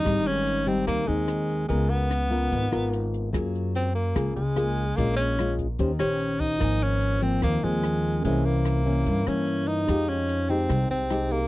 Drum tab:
HH |xxxxxxxx|xxxxxxxx|xxxxxxxx|xxxxxxxx|
SD |r---r-r-|--r--r--|r---r-r-|--r--r--|
BD |o---o---|o---o---|o---o---|o--oo--o|

HH |xxxxxxxx|xxxxxxxx|xxxxxxxx|
SD |r---r-r-|--r--r--|r---r-r-|
BD |o---o---|o---o---|o---o---|